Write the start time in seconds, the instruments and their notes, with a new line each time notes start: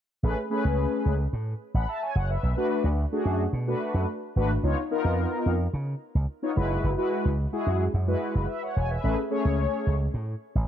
0.23 slap bass A1, analog polysynth A3 C#4 G#4 B4
0.50 analog polysynth A3 C#4 G#4 B4
0.65 slap bass C#2
1.06 slap bass C#2
1.33 slap bass A2
1.74 slap bass A1, analog polysynth F#5 B5
1.88 analog polysynth E5 A5
2.02 analog polysynth C#5 G#5
2.15 slap bass F#1, analog polysynth C#5 F#5
2.30 analog polysynth B4 E5
2.43 slap bass B1
2.57 analog polysynth A3 D4 F#4 B4
2.84 slap bass D2
3.12 analog polysynth A3 D4 F#4 G#4
3.25 slap bass F#2
3.53 slap bass B2
3.67 analog polysynth A3 D4 F#4 B4
3.94 slap bass F#2
4.36 slap bass G#1, analog polysynth A3 D4 F#4 B4
4.63 slap bass C#2, analog polysynth B3 D#4 F4 C#5
4.91 analog polysynth B3 D#4 F4 A#4
5.05 slap bass F2
5.46 slap bass F2
5.73 slap bass C#3
6.15 slap bass C#2
6.42 analog polysynth B3 D#4 F4 C#5
6.56 slap bass F#1, analog polysynth G#3 E4 F#4 B4
6.84 slap bass F#1
6.97 analog polysynth G#3 E4 F#4 B4
7.25 slap bass C#2
7.52 analog polysynth G#3 E4 F#4 G#4
7.67 slap bass F#2
7.94 slap bass F#2
8.07 analog polysynth G#3 E4 F#4 B4
8.35 slap bass F#1
8.49 analog polysynth B4 E5
8.63 analog polysynth C#5 F#5
8.76 slap bass E1, analog polysynth C#5 G#5
8.90 analog polysynth B4 E5
9.03 slap bass A1, analog polysynth A3 C#4 G#4 B4
9.30 analog polysynth A3 C#4 G#4 C#5
9.45 slap bass C#2
9.87 slap bass C#2
10.14 slap bass A2
10.55 slap bass A1